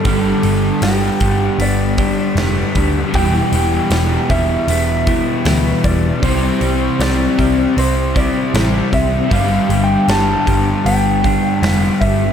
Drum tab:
HH |oooooooo|oooooooo|oooooooo|oooooooo|
SD |--o---o-|--o---o-|--o---o-|--o---o-|
BD |o--o-o-o|o--o-o-o|o--o-o-o|o--o-o-o|